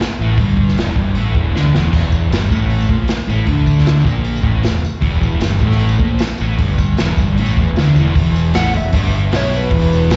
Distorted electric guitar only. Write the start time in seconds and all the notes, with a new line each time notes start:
0.01 muted distorted electric guitar stroke
0.21 A2 A3
0.40 G2 G3
0.80 E2 E3
0.98 G2 G3
1.17 A2 A3
1.35 E2 E3
1.54 D3 D4
1.74 E2 E3
1.94 E2 E3
2.30 G2 G3
2.50 A2 A3
2.90 A#2 A#3
3.08 muted distorted electric guitar stroke
3.28 A2 A3
3.47 D3 D4
4.04 A#2 A#3
4.42 A2 A3
4.62 E2
4.82 muted distorted electric guitar stroke
5.00 E2 E3
5.42 G2 G3
5.59 A2 A3
5.99 A#2 A#3
6.21 muted distorted electric guitar stroke
6.41 A2 A3
6.61 G2 G3
7.00 E2 E3
7.20 G2 G3
7.39 A2 A3
7.58 E2 E3
7.78 D3 D4
7.97 E2 E3
8.16 E2 E3
8.56 A2 A3
8.75 E2
8.93 G2 G3
9.33 B2 B3
9.71 E2 E3
10.11 B2 B3